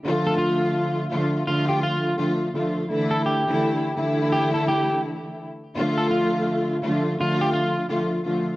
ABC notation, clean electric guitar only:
X:1
M:4/4
L:1/16
Q:"Swing 16ths" 1/4=84
K:Dm
V:1 name="Clean electric guitar"
z A F6 F G F2 z4 | z A G6 G A G2 z4 | z A F6 F G F2 z4 |]